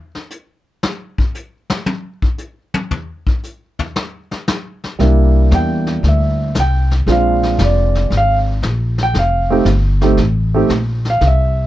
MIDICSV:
0, 0, Header, 1, 4, 480
1, 0, Start_track
1, 0, Tempo, 519031
1, 775, Time_signature, 4, 2, 24, 8
1, 10791, End_track
2, 0, Start_track
2, 0, Title_t, "Grand piano"
2, 0, Program_c, 0, 0
2, 4612, Note_on_c, 0, 55, 59
2, 4619, Note_on_c, 0, 58, 59
2, 4625, Note_on_c, 0, 62, 54
2, 4627, Note_on_c, 0, 64, 65
2, 5128, Note_on_c, 0, 79, 82
2, 5562, Note_off_c, 0, 79, 0
2, 5627, Note_on_c, 0, 76, 66
2, 5966, Note_off_c, 0, 55, 0
2, 5970, Note_off_c, 0, 58, 0
2, 5973, Note_off_c, 0, 62, 0
2, 5974, Note_off_c, 0, 64, 0
2, 6053, Note_off_c, 0, 76, 0
2, 6101, Note_on_c, 0, 79, 87
2, 6400, Note_off_c, 0, 79, 0
2, 6542, Note_on_c, 0, 56, 56
2, 6548, Note_on_c, 0, 60, 49
2, 6554, Note_on_c, 0, 65, 59
2, 6555, Note_on_c, 0, 62, 51
2, 6585, Note_on_c, 0, 77, 79
2, 7012, Note_off_c, 0, 77, 0
2, 7067, Note_on_c, 0, 74, 63
2, 7492, Note_off_c, 0, 74, 0
2, 7559, Note_on_c, 0, 77, 93
2, 7739, Note_off_c, 0, 77, 0
2, 7891, Note_off_c, 0, 56, 0
2, 7894, Note_off_c, 0, 60, 0
2, 7897, Note_off_c, 0, 62, 0
2, 7897, Note_off_c, 0, 65, 0
2, 8349, Note_on_c, 0, 79, 96
2, 8477, Note_off_c, 0, 79, 0
2, 8498, Note_on_c, 0, 77, 83
2, 8789, Note_on_c, 0, 57, 70
2, 8792, Note_on_c, 0, 60, 69
2, 8803, Note_on_c, 0, 63, 70
2, 8804, Note_on_c, 0, 67, 77
2, 8926, Note_off_c, 0, 57, 0
2, 8927, Note_off_c, 0, 60, 0
2, 8927, Note_off_c, 0, 77, 0
2, 8933, Note_off_c, 0, 63, 0
2, 8933, Note_off_c, 0, 67, 0
2, 9265, Note_on_c, 0, 57, 71
2, 9269, Note_on_c, 0, 60, 62
2, 9274, Note_on_c, 0, 63, 64
2, 9277, Note_on_c, 0, 67, 76
2, 9403, Note_off_c, 0, 57, 0
2, 9405, Note_off_c, 0, 60, 0
2, 9408, Note_off_c, 0, 63, 0
2, 9409, Note_off_c, 0, 67, 0
2, 9751, Note_on_c, 0, 57, 72
2, 9758, Note_on_c, 0, 60, 67
2, 9763, Note_on_c, 0, 63, 65
2, 9769, Note_on_c, 0, 67, 78
2, 9886, Note_off_c, 0, 57, 0
2, 9889, Note_off_c, 0, 60, 0
2, 9892, Note_off_c, 0, 63, 0
2, 9895, Note_off_c, 0, 67, 0
2, 10265, Note_on_c, 0, 77, 83
2, 10393, Note_off_c, 0, 77, 0
2, 10426, Note_on_c, 0, 76, 79
2, 10791, Note_off_c, 0, 76, 0
2, 10791, End_track
3, 0, Start_track
3, 0, Title_t, "Upright bass"
3, 0, Program_c, 1, 32
3, 4617, Note_on_c, 1, 36, 82
3, 5085, Note_off_c, 1, 36, 0
3, 5096, Note_on_c, 1, 40, 87
3, 5565, Note_off_c, 1, 40, 0
3, 5575, Note_on_c, 1, 38, 81
3, 6044, Note_off_c, 1, 38, 0
3, 6054, Note_on_c, 1, 36, 86
3, 6524, Note_off_c, 1, 36, 0
3, 6534, Note_on_c, 1, 34, 86
3, 7003, Note_off_c, 1, 34, 0
3, 7016, Note_on_c, 1, 29, 87
3, 7484, Note_off_c, 1, 29, 0
3, 7495, Note_on_c, 1, 32, 87
3, 7964, Note_off_c, 1, 32, 0
3, 7974, Note_on_c, 1, 34, 86
3, 8443, Note_off_c, 1, 34, 0
3, 8450, Note_on_c, 1, 29, 79
3, 8921, Note_off_c, 1, 29, 0
3, 8926, Note_on_c, 1, 31, 91
3, 9398, Note_off_c, 1, 31, 0
3, 9406, Note_on_c, 1, 33, 86
3, 9878, Note_off_c, 1, 33, 0
3, 9887, Note_on_c, 1, 34, 85
3, 10358, Note_off_c, 1, 34, 0
3, 10366, Note_on_c, 1, 36, 88
3, 10791, Note_off_c, 1, 36, 0
3, 10791, End_track
4, 0, Start_track
4, 0, Title_t, "Drums"
4, 137, Note_on_c, 9, 38, 34
4, 230, Note_off_c, 9, 38, 0
4, 281, Note_on_c, 9, 44, 55
4, 374, Note_off_c, 9, 44, 0
4, 768, Note_on_c, 9, 38, 94
4, 860, Note_off_c, 9, 38, 0
4, 1095, Note_on_c, 9, 36, 73
4, 1187, Note_off_c, 9, 36, 0
4, 1243, Note_on_c, 9, 44, 50
4, 1336, Note_off_c, 9, 44, 0
4, 1569, Note_on_c, 9, 38, 86
4, 1662, Note_off_c, 9, 38, 0
4, 1722, Note_on_c, 9, 48, 86
4, 1815, Note_off_c, 9, 48, 0
4, 2056, Note_on_c, 9, 36, 73
4, 2149, Note_off_c, 9, 36, 0
4, 2203, Note_on_c, 9, 44, 55
4, 2295, Note_off_c, 9, 44, 0
4, 2534, Note_on_c, 9, 48, 91
4, 2627, Note_off_c, 9, 48, 0
4, 2690, Note_on_c, 9, 43, 93
4, 2782, Note_off_c, 9, 43, 0
4, 3021, Note_on_c, 9, 36, 72
4, 3113, Note_off_c, 9, 36, 0
4, 3176, Note_on_c, 9, 44, 52
4, 3269, Note_off_c, 9, 44, 0
4, 3506, Note_on_c, 9, 43, 92
4, 3598, Note_off_c, 9, 43, 0
4, 3661, Note_on_c, 9, 38, 88
4, 3753, Note_off_c, 9, 38, 0
4, 3988, Note_on_c, 9, 38, 42
4, 4081, Note_off_c, 9, 38, 0
4, 4139, Note_on_c, 9, 44, 53
4, 4141, Note_on_c, 9, 38, 92
4, 4231, Note_off_c, 9, 44, 0
4, 4233, Note_off_c, 9, 38, 0
4, 4473, Note_on_c, 9, 38, 42
4, 4565, Note_off_c, 9, 38, 0
4, 4619, Note_on_c, 9, 36, 19
4, 4620, Note_on_c, 9, 25, 42
4, 4620, Note_on_c, 9, 38, 46
4, 4711, Note_off_c, 9, 36, 0
4, 4713, Note_off_c, 9, 38, 0
4, 5098, Note_on_c, 9, 36, 26
4, 5098, Note_on_c, 9, 44, 54
4, 5100, Note_on_c, 9, 38, 60
4, 5190, Note_off_c, 9, 36, 0
4, 5191, Note_off_c, 9, 44, 0
4, 5193, Note_off_c, 9, 38, 0
4, 5425, Note_on_c, 9, 38, 39
4, 5518, Note_off_c, 9, 38, 0
4, 5579, Note_on_c, 9, 36, 18
4, 5583, Note_off_c, 9, 25, 0
4, 5583, Note_on_c, 9, 25, 50
4, 5583, Note_on_c, 9, 38, 44
4, 5671, Note_off_c, 9, 36, 0
4, 5675, Note_off_c, 9, 38, 0
4, 6056, Note_on_c, 9, 44, 61
4, 6058, Note_on_c, 9, 36, 25
4, 6058, Note_on_c, 9, 38, 63
4, 6149, Note_off_c, 9, 44, 0
4, 6151, Note_off_c, 9, 36, 0
4, 6151, Note_off_c, 9, 38, 0
4, 6392, Note_on_c, 9, 38, 42
4, 6485, Note_off_c, 9, 38, 0
4, 6539, Note_on_c, 9, 36, 23
4, 6542, Note_off_c, 9, 25, 0
4, 6542, Note_on_c, 9, 25, 46
4, 6542, Note_on_c, 9, 38, 43
4, 6631, Note_off_c, 9, 36, 0
4, 6635, Note_off_c, 9, 38, 0
4, 6872, Note_on_c, 9, 38, 43
4, 6964, Note_off_c, 9, 38, 0
4, 7016, Note_on_c, 9, 44, 51
4, 7017, Note_on_c, 9, 36, 25
4, 7018, Note_on_c, 9, 38, 61
4, 7108, Note_off_c, 9, 44, 0
4, 7110, Note_off_c, 9, 36, 0
4, 7110, Note_off_c, 9, 38, 0
4, 7354, Note_on_c, 9, 38, 41
4, 7447, Note_off_c, 9, 38, 0
4, 7497, Note_on_c, 9, 36, 25
4, 7503, Note_off_c, 9, 25, 0
4, 7503, Note_on_c, 9, 25, 41
4, 7503, Note_on_c, 9, 38, 42
4, 7589, Note_off_c, 9, 36, 0
4, 7595, Note_off_c, 9, 38, 0
4, 7977, Note_on_c, 9, 36, 23
4, 7979, Note_on_c, 9, 44, 50
4, 7980, Note_on_c, 9, 38, 62
4, 8069, Note_off_c, 9, 36, 0
4, 8071, Note_off_c, 9, 44, 0
4, 8073, Note_off_c, 9, 38, 0
4, 8306, Note_on_c, 9, 38, 38
4, 8399, Note_off_c, 9, 38, 0
4, 8452, Note_on_c, 9, 36, 22
4, 8456, Note_off_c, 9, 25, 0
4, 8456, Note_on_c, 9, 25, 48
4, 8456, Note_on_c, 9, 38, 48
4, 8544, Note_off_c, 9, 36, 0
4, 8548, Note_off_c, 9, 38, 0
4, 8927, Note_on_c, 9, 44, 53
4, 8929, Note_on_c, 9, 38, 62
4, 8930, Note_on_c, 9, 36, 22
4, 9019, Note_off_c, 9, 44, 0
4, 9021, Note_off_c, 9, 38, 0
4, 9022, Note_off_c, 9, 36, 0
4, 9259, Note_on_c, 9, 38, 39
4, 9351, Note_off_c, 9, 38, 0
4, 9407, Note_off_c, 9, 25, 0
4, 9407, Note_on_c, 9, 25, 46
4, 9407, Note_on_c, 9, 38, 46
4, 9408, Note_on_c, 9, 36, 20
4, 9500, Note_off_c, 9, 36, 0
4, 9500, Note_off_c, 9, 38, 0
4, 9890, Note_on_c, 9, 36, 23
4, 9890, Note_on_c, 9, 44, 60
4, 9892, Note_on_c, 9, 38, 64
4, 9982, Note_off_c, 9, 36, 0
4, 9982, Note_off_c, 9, 44, 0
4, 9984, Note_off_c, 9, 38, 0
4, 10218, Note_on_c, 9, 38, 41
4, 10311, Note_off_c, 9, 38, 0
4, 10368, Note_off_c, 9, 25, 0
4, 10368, Note_on_c, 9, 25, 48
4, 10368, Note_on_c, 9, 38, 46
4, 10370, Note_on_c, 9, 36, 25
4, 10461, Note_off_c, 9, 38, 0
4, 10463, Note_off_c, 9, 36, 0
4, 10791, Note_off_c, 9, 25, 0
4, 10791, End_track
0, 0, End_of_file